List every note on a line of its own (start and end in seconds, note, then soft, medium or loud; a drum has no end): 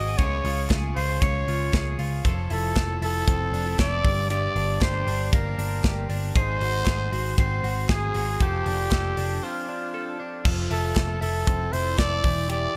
0.00 0.14 G#1 loud
0.00 0.19 G#2 medium
0.00 0.24 C4 medium
0.00 0.24 F#4 medium
0.00 0.19 G#4 medium
0.00 0.19 D#5 loud
0.00 0.19 D#7 medium
0.17 0.40 C#2 medium
0.17 2.25 C#3 medium
0.17 0.69 G#4 medium
0.17 0.70 C#5 loud
0.17 0.71 C#7 medium
0.17 kick loud
0.17 hi-hat pedal medium
0.17 ride medium
0.44 0.66 C#2 loud
0.44 0.96 F4 medium
0.44 open hi-hat medium
0.70 0.91 C#2 medium
0.70 1.72 G#4 medium
0.70 kick medium
0.70 snare loud
0.70 clap loud
0.70 ride medium
0.96 1.18 C#2 loud
0.96 1.48 F4 medium
0.96 1.22 C5 medium
0.96 1.21 C7 medium
0.96 open hi-hat medium
1.21 1.43 C#2 loud
1.21 2.30 C#4 medium
1.21 1.99 C#5 medium
1.21 2.00 C#7 loud
1.21 kick loud
1.21 hi-hat pedal medium
1.21 ride medium
1.48 1.69 C#2 medium
1.48 1.99 F4 medium
1.48 open hi-hat medium
1.73 1.95 C#2 loud
1.73 2.25 G#4 medium
1.73 kick medium
1.73 snare loud
1.73 clap medium
1.73 hi-hat pedal medium
1.73 ride medium
1.99 2.20 C#2 medium
1.99 2.50 F4 medium
1.99 open hi-hat medium
2.25 2.46 F1 loud
2.25 4.33 F3 medium
2.25 2.75 A4 medium
2.25 kick loud
2.25 hi-hat pedal medium
2.25 ride medium
2.50 2.72 F1 loud
2.50 3.01 E4 medium
2.50 2.99 A4 medium
2.50 3.00 A6 medium
2.50 open hi-hat medium
2.76 2.97 F1 loud
2.76 3.78 A4 medium
2.76 kick medium
2.76 snare loud
2.76 clap loud
2.76 hi-hat pedal medium
2.76 ride medium
3.02 3.23 F1 loud
3.02 3.53 E4 medium
3.02 3.76 A4 loud
3.02 3.75 A6 medium
3.02 open hi-hat medium
3.27 3.49 F1 loud
3.27 4.10 C4 medium
3.27 kick loud
3.27 hi-hat pedal medium
3.27 ride medium
3.52 3.74 F1 loud
3.52 3.66 D4 medium
3.52 open hi-hat medium
3.66 4.10 E4 medium
3.79 4.00 F1 loud
3.79 4.10 A4 medium
3.79 4.27 D5 loud
3.79 4.27 D7 medium
3.79 kick loud
3.79 snare loud
3.79 clap medium
3.79 hi-hat pedal medium
3.79 ride medium
4.04 4.47 G1 medium
4.04 4.29 G2 medium
4.04 kick loud
4.04 open hi-hat medium
4.30 6.35 G2 medium
4.30 4.81 G4 medium
4.30 4.84 D5 loud
4.30 4.79 D7 medium
4.30 hi-hat pedal medium
4.30 ride medium
4.56 4.77 G1 loud
4.56 5.06 D4 medium
4.56 open hi-hat medium
4.81 5.03 G1 medium
4.81 5.83 G4 medium
4.81 5.33 C5 loud
4.81 5.33 C7 medium
4.81 kick loud
4.81 snare loud
4.81 clap loud
4.81 hi-hat pedal medium
4.81 ride medium
5.07 5.28 G1 loud
5.07 5.57 D4 medium
5.07 open hi-hat medium
5.33 5.54 G1 loud
5.33 6.41 A#3 medium
5.33 6.06 A#4 medium
5.33 6.07 A#6 medium
5.33 kick loud
5.33 hi-hat pedal medium
5.33 ride medium
5.58 5.80 G1 medium
5.58 6.09 D4 medium
5.58 open hi-hat medium
5.84 6.05 G1 loud
5.84 6.35 G4 medium
5.84 kick medium
5.84 snare loud
5.84 clap medium
5.84 hi-hat pedal medium
5.84 ride medium
6.09 6.30 G1 medium
6.09 6.41 D4 medium
6.09 open hi-hat medium
6.35 6.56 G#1 loud
6.35 8.41 G#2 medium
6.35 6.85 G#4 medium
6.35 7.35 C5 loud
6.35 7.35 C7 loud
6.35 kick loud
6.35 hi-hat pedal medium
6.35 ride medium
6.61 6.82 G#1 loud
6.61 7.11 F#4 medium
6.61 open hi-hat medium
6.86 7.08 G#1 medium
6.86 7.88 G#4 medium
6.86 kick medium
6.86 snare loud
6.86 clap loud
6.86 hi-hat pedal medium
6.86 ride medium
7.12 7.33 G#1 loud
7.12 7.63 F#4 medium
7.12 open hi-hat medium
7.38 7.59 G#1 loud
7.38 8.70 C4 medium
7.38 7.86 C5 medium
7.38 7.87 C7 loud
7.38 kick loud
7.38 hi-hat pedal medium
7.38 ride medium
7.64 7.85 G#1 loud
7.64 8.14 F#4 medium
7.64 open hi-hat medium
7.89 8.10 G#1 loud
7.89 8.40 G#4 medium
7.89 8.43 G#4 loud
7.89 8.38 G#6 medium
7.89 kick loud
7.89 snare loud
7.89 clap medium
7.89 hi-hat pedal medium
7.89 ride medium
8.14 8.36 G#1 loud
8.14 8.46 F#4 medium
8.14 open hi-hat medium
8.40 8.61 F1 loud
8.40 10.44 F3 medium
8.40 9.45 G4 loud
8.40 8.91 A4 medium
8.40 9.44 G6 medium
8.40 kick loud
8.40 hi-hat pedal medium
8.40 ride medium
8.66 8.87 F1 loud
8.66 9.16 D4 medium
8.66 open hi-hat medium
8.91 9.13 F1 loud
8.91 9.94 A4 medium
8.91 kick loud
8.91 snare loud
8.91 clap loud
8.91 hi-hat pedal medium
8.91 ride medium
9.17 9.38 F1 loud
9.17 9.67 D4 medium
9.17 open hi-hat medium
9.43 10.50 C4 medium
9.43 10.20 F4 medium
9.43 10.21 F6 medium
9.69 10.18 D4 medium
9.94 10.44 A4 medium
10.20 10.50 D4 medium
10.45 10.66 F1 loud
10.45 12.29 F3 medium
10.45 10.95 A4 medium
10.45 kick loud
10.45 crash loud
10.71 10.92 F1 loud
10.71 11.21 E4 medium
10.71 11.19 A4 medium
10.71 open hi-hat medium
10.96 11.17 F1 medium
10.96 11.96 A4 medium
10.96 kick loud
10.96 snare loud
10.96 clap loud
10.96 hi-hat pedal medium
10.96 ride medium
11.21 11.43 F1 loud
11.21 11.72 E4 medium
11.21 11.74 A4 loud
11.21 open hi-hat medium
11.47 11.68 F1 loud
11.47 12.29 C4 medium
11.47 kick loud
11.47 hi-hat pedal medium
11.47 ride medium
11.73 11.94 F1 loud
11.73 12.74 E4 medium
11.73 11.98 C5 loud
11.73 open hi-hat medium
11.98 12.20 F1 loud
11.98 12.29 A4 medium
11.98 12.46 D5 loud
11.98 kick loud
11.98 snare loud
11.98 clap medium
11.98 hi-hat pedal medium
11.98 ride medium
12.24 12.66 E1 medium
12.24 12.48 E3 medium
12.24 kick loud
12.24 open hi-hat medium
12.49 12.77 E3 medium
12.49 12.77 G4 medium
12.49 12.77 D5 loud
12.49 hi-hat pedal medium
12.49 ride medium